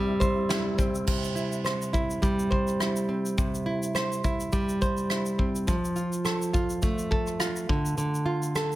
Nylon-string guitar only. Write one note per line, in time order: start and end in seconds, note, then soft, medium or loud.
0.00 1.06 C3 medium
0.00 2.22 G3 medium
0.00 0.78 C4 medium
0.00 0.49 E4 medium
0.00 0.20 C5 medium
0.20 1.64 C5 medium
0.49 1.35 E4 medium
0.78 3.08 C4 medium
1.07 3.36 C3 medium
1.35 1.92 E4 medium
1.64 2.50 C5 medium
1.93 2.79 E4 medium
2.22 4.51 G3 medium
2.51 3.94 C5 medium
2.80 3.65 E4 medium
3.09 5.38 C4 soft
3.38 5.68 C3 medium
3.66 4.23 E4 medium
3.95 4.81 C5 medium
4.25 5.09 E4 medium
4.53 5.75 G3 medium
4.82 5.75 C5 medium
5.10 5.74 E4 medium
5.39 5.74 C4 soft
5.67 7.69 F3 medium
5.96 6.53 F4 medium
6.25 7.10 A4 medium
6.53 7.39 F4 medium
6.82 8.76 A3 medium
7.11 8.55 A4 medium
7.40 8.25 F4 medium
7.69 7.96 D3 medium
7.98 8.76 D3 medium
8.26 8.76 F4 medium
8.56 8.76 A4 medium